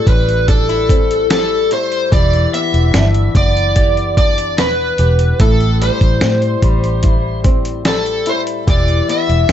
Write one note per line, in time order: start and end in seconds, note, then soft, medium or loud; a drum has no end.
0.00 2.12 A2 medium
0.00 0.88 C4 medium
0.00 0.48 E4 medium
0.07 1.67 A1 medium
0.07 1.31 G3 medium
0.07 0.45 B4 medium
0.07 kick medium
0.07 closed hi-hat medium
0.28 closed hi-hat soft
0.48 0.69 D4 medium
0.48 1.26 A4 medium
0.48 kick medium
0.48 closed hi-hat medium
0.69 1.70 E4 medium
0.69 closed hi-hat soft
0.89 2.20 C4 medium
0.89 kick medium
0.89 closed hi-hat medium
1.11 closed hi-hat soft
1.30 2.11 G3 medium
1.30 1.69 A4 medium
1.30 snare loud
1.30 closed hi-hat medium
1.71 2.94 E4 medium
1.71 2.10 C5 medium
1.71 closed hi-hat medium
1.92 closed hi-hat soft
2.12 2.45 E1 loud
2.12 5.62 E3 medium
2.12 3.76 G4 medium
2.12 2.54 D5 medium
2.12 kick loud
2.12 closed hi-hat medium
2.33 closed hi-hat soft
2.54 3.34 B3 medium
2.54 3.36 E5 medium
2.54 closed hi-hat medium
2.74 2.90 E1 loud
2.74 closed hi-hat soft
2.94 3.27 G1 medium
2.94 4.16 D4 medium
2.94 snare loud
2.94 closed hi-hat medium
3.14 closed hi-hat soft
3.35 4.58 F#1 medium
3.35 4.57 B3 medium
3.35 4.17 D5 loud
3.35 kick medium
3.35 closed hi-hat medium
3.57 closed hi-hat soft
3.76 4.99 G4 medium
3.76 kick medium
3.76 closed hi-hat medium
3.97 closed hi-hat soft
4.17 5.40 D4 medium
4.17 4.60 D5 medium
4.17 kick medium
4.17 closed hi-hat medium
4.38 closed hi-hat medium
4.58 4.91 E1 medium
4.58 5.48 B3 medium
4.58 5.40 B4 medium
4.58 snare medium
4.58 closed hi-hat medium
4.98 5.32 E1 medium
4.98 8.49 G4 medium
4.98 closed hi-hat medium
5.19 closed hi-hat soft
5.40 5.89 A1 loud
5.40 8.68 A2 medium
5.40 7.03 E4 medium
5.40 5.82 A4 medium
5.40 kick loud
5.40 closed hi-hat loud
5.60 closed hi-hat soft
5.81 6.62 G3 medium
5.81 7.41 C5 medium
5.81 closed hi-hat medium
6.01 6.18 A1 medium
6.01 kick medium
6.01 closed hi-hat soft
6.21 6.55 A2 medium
6.21 7.43 C4 medium
6.21 snare loud
6.21 closed hi-hat medium
6.42 closed hi-hat soft
6.62 8.22 A1 medium
6.62 7.85 G3 medium
6.62 kick medium
6.62 closed hi-hat medium
6.84 closed hi-hat soft
7.03 8.26 E4 medium
7.03 kick medium
7.03 closed hi-hat medium
7.44 8.75 C4 medium
7.44 kick medium
7.44 closed hi-hat medium
7.65 closed hi-hat medium
7.85 8.67 G3 medium
7.85 8.29 A4 medium
7.85 snare medium
7.85 closed hi-hat medium
8.06 closed hi-hat soft
8.26 9.49 E4 medium
8.26 8.40 C5 medium
8.26 closed hi-hat medium
8.47 closed hi-hat soft
8.67 9.00 E1 medium
8.67 9.52 E3 medium
8.67 9.52 G4 medium
8.67 9.10 D5 medium
8.67 kick loud
8.67 closed hi-hat medium
8.88 closed hi-hat soft
9.09 9.52 B3 medium
9.09 9.52 E5 loud
9.09 closed hi-hat medium
9.29 9.45 E1 medium
9.29 closed hi-hat soft
9.49 snare loud
9.49 closed hi-hat medium